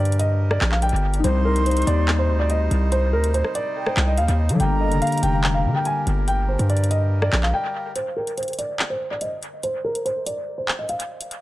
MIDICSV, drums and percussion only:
0, 0, Header, 1, 2, 480
1, 0, Start_track
1, 0, Tempo, 419580
1, 1421, Time_signature, 4, 2, 24, 8
1, 13056, End_track
2, 0, Start_track
2, 0, Title_t, "Drums"
2, 61, Note_on_c, 9, 42, 57
2, 140, Note_off_c, 9, 42, 0
2, 140, Note_on_c, 9, 42, 69
2, 223, Note_off_c, 9, 42, 0
2, 223, Note_on_c, 9, 42, 91
2, 337, Note_off_c, 9, 42, 0
2, 581, Note_on_c, 9, 37, 95
2, 696, Note_off_c, 9, 37, 0
2, 700, Note_on_c, 9, 39, 116
2, 815, Note_off_c, 9, 39, 0
2, 820, Note_on_c, 9, 39, 70
2, 935, Note_off_c, 9, 39, 0
2, 940, Note_on_c, 9, 42, 69
2, 1020, Note_off_c, 9, 42, 0
2, 1020, Note_on_c, 9, 42, 54
2, 1101, Note_off_c, 9, 42, 0
2, 1101, Note_on_c, 9, 42, 41
2, 1215, Note_off_c, 9, 42, 0
2, 1299, Note_on_c, 9, 42, 92
2, 1414, Note_off_c, 9, 42, 0
2, 1421, Note_on_c, 9, 42, 88
2, 1535, Note_off_c, 9, 42, 0
2, 1783, Note_on_c, 9, 42, 77
2, 1898, Note_off_c, 9, 42, 0
2, 1900, Note_on_c, 9, 42, 62
2, 1960, Note_off_c, 9, 42, 0
2, 1960, Note_on_c, 9, 42, 61
2, 2020, Note_off_c, 9, 42, 0
2, 2020, Note_on_c, 9, 42, 58
2, 2080, Note_off_c, 9, 42, 0
2, 2080, Note_on_c, 9, 42, 58
2, 2142, Note_off_c, 9, 42, 0
2, 2142, Note_on_c, 9, 42, 88
2, 2257, Note_off_c, 9, 42, 0
2, 2380, Note_on_c, 9, 39, 120
2, 2494, Note_off_c, 9, 39, 0
2, 2856, Note_on_c, 9, 42, 73
2, 2970, Note_off_c, 9, 42, 0
2, 3103, Note_on_c, 9, 42, 65
2, 3217, Note_off_c, 9, 42, 0
2, 3340, Note_on_c, 9, 42, 88
2, 3454, Note_off_c, 9, 42, 0
2, 3703, Note_on_c, 9, 42, 78
2, 3818, Note_off_c, 9, 42, 0
2, 3825, Note_on_c, 9, 42, 72
2, 3939, Note_off_c, 9, 42, 0
2, 3941, Note_on_c, 9, 37, 68
2, 4055, Note_off_c, 9, 37, 0
2, 4062, Note_on_c, 9, 42, 92
2, 4176, Note_off_c, 9, 42, 0
2, 4421, Note_on_c, 9, 37, 97
2, 4536, Note_off_c, 9, 37, 0
2, 4540, Note_on_c, 9, 39, 111
2, 4655, Note_off_c, 9, 39, 0
2, 4776, Note_on_c, 9, 42, 69
2, 4891, Note_off_c, 9, 42, 0
2, 4901, Note_on_c, 9, 42, 93
2, 5015, Note_off_c, 9, 42, 0
2, 5139, Note_on_c, 9, 42, 91
2, 5254, Note_off_c, 9, 42, 0
2, 5261, Note_on_c, 9, 42, 86
2, 5375, Note_off_c, 9, 42, 0
2, 5624, Note_on_c, 9, 42, 74
2, 5738, Note_off_c, 9, 42, 0
2, 5740, Note_on_c, 9, 42, 62
2, 5801, Note_off_c, 9, 42, 0
2, 5801, Note_on_c, 9, 42, 62
2, 5861, Note_off_c, 9, 42, 0
2, 5861, Note_on_c, 9, 42, 60
2, 5920, Note_off_c, 9, 42, 0
2, 5920, Note_on_c, 9, 42, 58
2, 5982, Note_off_c, 9, 42, 0
2, 5982, Note_on_c, 9, 42, 89
2, 6096, Note_off_c, 9, 42, 0
2, 6220, Note_on_c, 9, 39, 124
2, 6334, Note_off_c, 9, 39, 0
2, 6696, Note_on_c, 9, 42, 74
2, 6811, Note_off_c, 9, 42, 0
2, 6943, Note_on_c, 9, 42, 67
2, 7057, Note_off_c, 9, 42, 0
2, 7181, Note_on_c, 9, 42, 86
2, 7295, Note_off_c, 9, 42, 0
2, 7544, Note_on_c, 9, 42, 77
2, 7658, Note_off_c, 9, 42, 0
2, 7660, Note_on_c, 9, 42, 44
2, 7740, Note_off_c, 9, 42, 0
2, 7740, Note_on_c, 9, 42, 59
2, 7821, Note_off_c, 9, 42, 0
2, 7821, Note_on_c, 9, 42, 75
2, 7903, Note_off_c, 9, 42, 0
2, 7903, Note_on_c, 9, 42, 90
2, 8017, Note_off_c, 9, 42, 0
2, 8261, Note_on_c, 9, 37, 97
2, 8376, Note_off_c, 9, 37, 0
2, 8381, Note_on_c, 9, 39, 112
2, 8496, Note_off_c, 9, 39, 0
2, 8501, Note_on_c, 9, 39, 69
2, 8616, Note_off_c, 9, 39, 0
2, 9101, Note_on_c, 9, 42, 84
2, 9215, Note_off_c, 9, 42, 0
2, 9464, Note_on_c, 9, 42, 73
2, 9578, Note_off_c, 9, 42, 0
2, 9581, Note_on_c, 9, 42, 57
2, 9641, Note_off_c, 9, 42, 0
2, 9641, Note_on_c, 9, 42, 58
2, 9701, Note_off_c, 9, 42, 0
2, 9701, Note_on_c, 9, 42, 57
2, 9761, Note_off_c, 9, 42, 0
2, 9761, Note_on_c, 9, 42, 58
2, 9822, Note_off_c, 9, 42, 0
2, 9822, Note_on_c, 9, 42, 89
2, 9937, Note_off_c, 9, 42, 0
2, 10060, Note_on_c, 9, 39, 117
2, 10174, Note_off_c, 9, 39, 0
2, 10536, Note_on_c, 9, 42, 71
2, 10651, Note_off_c, 9, 42, 0
2, 10783, Note_on_c, 9, 42, 65
2, 10898, Note_off_c, 9, 42, 0
2, 11021, Note_on_c, 9, 42, 88
2, 11135, Note_off_c, 9, 42, 0
2, 11384, Note_on_c, 9, 42, 77
2, 11499, Note_off_c, 9, 42, 0
2, 11506, Note_on_c, 9, 42, 67
2, 11620, Note_off_c, 9, 42, 0
2, 11743, Note_on_c, 9, 42, 87
2, 11857, Note_off_c, 9, 42, 0
2, 12221, Note_on_c, 9, 39, 112
2, 12336, Note_off_c, 9, 39, 0
2, 12457, Note_on_c, 9, 42, 67
2, 12571, Note_off_c, 9, 42, 0
2, 12581, Note_on_c, 9, 42, 90
2, 12696, Note_off_c, 9, 42, 0
2, 12819, Note_on_c, 9, 42, 86
2, 12934, Note_off_c, 9, 42, 0
2, 12941, Note_on_c, 9, 42, 85
2, 13055, Note_off_c, 9, 42, 0
2, 13056, End_track
0, 0, End_of_file